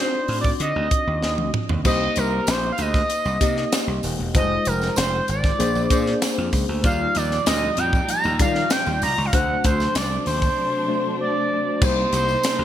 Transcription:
Already playing: tine electric piano C4 D4 D#4 F4 F#4
0.00 analog synth lead C5
0.28 slap bass A2, open hi-hat
0.41 analog synth lead D5, kick
0.60 slap bass D3, analog synth lead D#5, closed hi-hat
0.76 slap bass D2
0.91 kick, closed hi-hat
1.07 slap bass D#2
1.22 slap bass D#2, snare
1.38 slap bass D2, high tom
1.54 mid tom
1.69 slap bass D#2, floor tom
1.84 slap bass C2, tine electric piano A#3 D#4 G4 C5, analog synth lead D#5, kick, crash, tambourine
2.16 slap bass C2, analog synth lead A#4, closed hi-hat, tambourine
2.47 slap bass A#1, analog synth lead C5, snare, closed hi-hat, tambourine
2.73 analog synth lead F5
2.78 slap bass D2, analog synth lead D#5, closed hi-hat, tambourine
2.94 kick, snare, tambourine
3.10 closed hi-hat, tambourine
3.25 slap bass C2, tambourine
3.40 slap bass C3, tine electric piano A#3 D#4 G4 D#5, kick, closed hi-hat, tambourine
3.57 snare
3.72 snare, closed hi-hat, tambourine
3.87 slap bass C2
4.03 slap bass D#1, open hi-hat, tambourine
4.19 slap bass E1
4.34 slap bass F1, tine electric piano G3 D#4 F4 C5, analog synth lead D#5, kick, closed hi-hat, tambourine
4.41 tine electric piano G#3
4.65 slap bass F1, analog synth lead A#4, closed hi-hat, tambourine
4.82 snare, tambourine
4.96 slap bass F1, analog synth lead C5, snare, closed hi-hat, tambourine
5.28 slap bass G#1, analog synth lead D5, closed hi-hat, tambourine
5.44 kick, snare, tambourine
5.59 slap bass A#1, tine electric piano A#3 D4 G#4 C5, closed hi-hat, tambourine
5.75 slap bass A#1, tambourine
5.90 slap bass A#2, tine electric piano A#3 D4 G#4 C5, kick, closed hi-hat, tambourine
6.06 snare
6.22 snare, closed hi-hat, tambourine
6.38 slap bass F2
6.53 slap bass C#2, kick, open hi-hat, tambourine
6.69 slap bass D2
6.83 slap bass D#2, string section A#2 F3 G3 D#4, tine electric piano G3 D#4 F4 D5, analog synth lead F5, kick, closed hi-hat, tambourine
7.15 slap bass D#2, analog synth lead D5, closed hi-hat, tambourine
7.31 snare, tambourine
7.46 slap bass D2, analog synth lead D#5, snare, closed hi-hat, tambourine
7.77 slap bass F2, analog synth lead G5, closed hi-hat, tambourine
7.93 kick, tambourine
8.09 analog synth lead A#5, closed hi-hat, tambourine
8.24 slap bass D#2, tambourine
8.39 slap bass D#3, tine electric piano G3 D#4 F4 D5, analog synth lead F5, kick, closed hi-hat, tambourine
8.55 snare
8.70 analog synth lead G5, snare, closed hi-hat, tambourine
8.86 slap bass D#2, tambourine
9.02 slap bass C2, analog synth lead A#5, open hi-hat, tambourine
9.18 slap bass C#2
9.25 analog synth lead F5
9.33 slap bass D2, string section C3 F#3 A3 D4, tine electric piano A3 D4 F#4 C5, analog synth lead F#5, kick, closed hi-hat, tambourine
9.64 slap bass D2, analog synth lead C5, kick, closed hi-hat, tambourine
9.80 snare, tambourine
9.95 slap bass C2, analog synth lead D5, snare, closed hi-hat, tambourine
10.26 slap bass D#2, analog synth lead C5, open hi-hat, tambourine
10.42 kick, tambourine
10.88 tine electric piano A3 D4 F#4 C5
11.21 analog synth lead D5
11.80 slap bass C2, string section C3 G3 A#3 D#4, tine electric piano A#3 D#4 G4 C5, analog synth lead C5, kick, crash, tambourine
12.13 slap bass C2, analog synth lead C5, closed hi-hat, tambourine
12.29 tambourine
12.43 snare, closed hi-hat, tambourine
12.59 slap bass D2

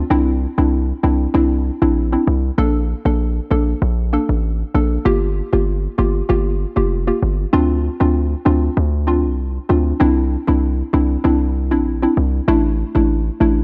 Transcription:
0.10 808-style bass C2, synth pluck C4 D4 E4
0.58 808-style bass C2, synth pluck C4 D4 E4
1.03 808-style bass C2, synth pluck C4 D4 E4
1.34 808-style bass C2, synth pluck C4 D4 E4
1.82 808-style bass A#1, synth pluck C4 D4 E4
2.13 synth pluck C4 D4 E4
2.27 808-style bass C2
2.58 808-style bass A#1, synth pluck A#3 D4 A4
3.05 808-style bass A#1, synth pluck A#3 D4 A4
3.51 808-style bass A#1, synth pluck A#3 D4 A4
3.82 808-style bass A#1
4.13 synth pluck A#3 D4 A4
4.29 808-style bass A1
4.74 808-style bass A#1, synth pluck A#3 D4 A4
5.05 808-style bass G1, synth pluck A#3 F4 G4
5.53 808-style bass G1, synth pluck A#3 F4 G4
5.98 808-style bass G1, synth pluck A#3 F4 G4
6.29 808-style bass G1, synth pluck A#3 F4 G4
6.76 808-style bass F1, synth pluck A#3 F4 G4
7.07 synth pluck A#3 F4 G4
7.23 808-style bass G1
7.53 808-style bass D2, synth pluck C4 D4 F4
8.00 808-style bass D2, synth pluck C4 D4 F4
8.45 808-style bass D2, synth pluck C4 D4 F4
8.77 808-style bass D2
9.07 synth pluck C4 D4 F4
9.24 808-style bass C2
9.69 808-style bass D2, synth pluck C4 D4 F4
10.00 808-style bass C2, synth pluck C4 D4 E4
10.47 808-style bass C2, synth pluck C4 D4 E4
10.93 808-style bass C2, synth pluck C4 D4 E4
11.24 808-style bass C2, synth pluck C4 D4 E4
11.71 808-style bass A#1, synth pluck C4 D4 E4
12.02 synth pluck C4 D4 E4
12.17 808-style bass C2
12.48 808-style bass A1, synth pluck A3 D4 E4
12.95 808-style bass A1, synth pluck A3 D4 E4
13.40 808-style bass A1, synth pluck A3 D4 E4

